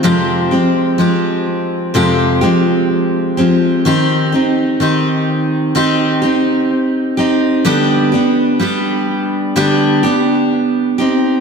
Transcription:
\new Staff \with { instrumentName = "Steel-string acoustic guitar" } { \time 4/4 \key f \dorian \tempo 4 = 63 <f, c f aes c' g'>8 <f aes c' g'>8 <f aes c' g'>4 <f, c f aes c' g'>8 <f aes c' g'>4 <f aes c' g'>8 | <ees c' ees' g'>8 <c' ees' g'>8 <ees c' ees' g'>4 <ees c' ees' g'>8 <c' ees' g'>4 <c' ees' g'>8 | <d g b d' g'>8 <b d' g'>8 <g b d' g'>4 <d g b d' g'>8 <b d' g'>4 <c' ees' g'>8 | }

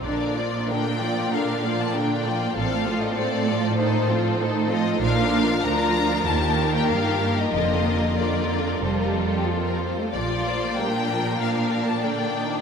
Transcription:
<<
  \new Staff \with { instrumentName = "Violin section" } { \time 4/4 \key bes \major \tempo 4 = 96 d''4 g''4 f''8. a''16 g''4 | f''8. ees''16 d''4 c''4 r8 ees''8 | f''4 bes''4 a''8. g''16 f''8. ees''16 | ees''4 d''4 c''16 bes'16 a'16 g'16 a'16 bes'16 c''8 |
d''4 g''4 f''8. a''16 g''4 | }
  \new Staff \with { instrumentName = "Violin section" } { \time 4/4 \key bes \major << { bes'8 d''8 bes'8 d''8 bes'8 d''8 bes'8 d''8 | c''8 a'8 c''8 a'8 c''8 a'8 c''8 a'8 | bes'4 bes'4 bes'2 | bes'4 bes'4 a'4. r8 |
d''8 c''8 bes'2 d''4 | } \\ { d'8 f'8 d'8 f'8 d'8 f'8 d'8 f'8 | a'8 f'8 a'8 f'8 a'8 f'8 a'8 f'8 | f'4 f'4 g'2 | f'4 f'4 f'4. r8 |
f'4 d'4 d'2 | } >> }
  \new Staff \with { instrumentName = "Viola section" } { \clef bass \time 4/4 \key bes \major << { d'8 bes8 d'8 bes8 d'8 bes8 d'8 bes8 | c'8 a8 c'8 a8 ees'8 c'8 ees'8 c'8 | d'4 d'4 bes2 | bes4 d4 g4 f8. a16 |
bes1 | } \\ { d8 f8 d8 f8 d8 f8 d8 f8 | a8 f8 a8 f8 ees8 f8 ees8 f8 | f4 f4 ees2 | d4 r2. |
f4 g8 f8 f4 d8 ees8 | } >> }
  \new Staff \with { instrumentName = "Cello section" } { \clef bass \time 4/4 \key bes \major bes,1 | a,1 | bes,4 d,4 ees,4 g,4 | f,2 f,4. r8 |
bes,1 | }
  \new Staff \with { instrumentName = "Double bass section" } { \clef bass \time 4/4 \key bes \major bes,,4 r2. | a,,4 r2. | bes,,4 r4 ees,4 r4 | f,,4 r4 f,,4 r4 |
bes,,4 r2. | }
>>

